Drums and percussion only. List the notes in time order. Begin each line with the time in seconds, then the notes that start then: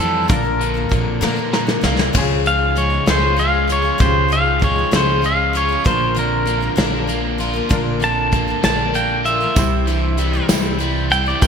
0.30 kick, closed hi-hat
0.61 closed hi-hat
0.92 kick, closed hi-hat
1.23 snare
1.53 snare
1.68 snare
1.84 snare
1.99 snare
2.14 kick, crash
2.46 closed hi-hat
2.76 closed hi-hat
3.07 snare, closed hi-hat
3.39 closed hi-hat
3.69 closed hi-hat
4.00 kick, closed hi-hat
4.32 closed hi-hat
4.62 kick, closed hi-hat
4.93 snare, closed hi-hat
5.24 closed hi-hat
5.55 closed hi-hat
5.86 kick, closed hi-hat
6.16 closed hi-hat
6.47 closed hi-hat
6.78 snare, closed hi-hat
7.09 closed hi-hat
7.40 closed hi-hat
7.70 kick, closed hi-hat
8.02 closed hi-hat
8.32 kick, closed hi-hat
8.64 snare, closed hi-hat
8.94 closed hi-hat
9.26 closed hi-hat
9.56 kick, closed hi-hat, tambourine
9.87 closed hi-hat, tambourine
10.18 closed hi-hat
10.49 snare, closed hi-hat, tambourine
10.65 tambourine
10.80 closed hi-hat
11.11 closed hi-hat
11.42 kick, closed hi-hat, tambourine